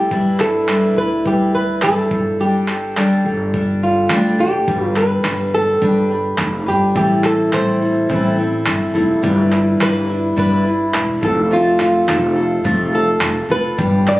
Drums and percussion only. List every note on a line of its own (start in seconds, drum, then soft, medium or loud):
0.11 kick loud
0.40 clap medium
0.68 clap loud
1.26 kick loud
1.82 clap loud
2.11 kick loud
2.68 clap medium
2.97 clap medium
3.54 kick loud
4.10 clap loud
4.68 kick loud
4.96 clap medium
5.24 clap loud
5.82 kick loud
6.38 clap loud
6.96 kick loud
7.24 clap medium
7.53 clap medium
8.10 kick loud
8.66 clap loud
9.24 kick loud
9.52 clap medium
9.81 clap loud
10.38 kick loud
10.94 clap loud
11.23 kick loud
11.80 clap medium
12.08 clap loud
12.65 kick loud
13.21 clap loud
13.78 kick loud
14.07 clap medium
14.07 tambourine medium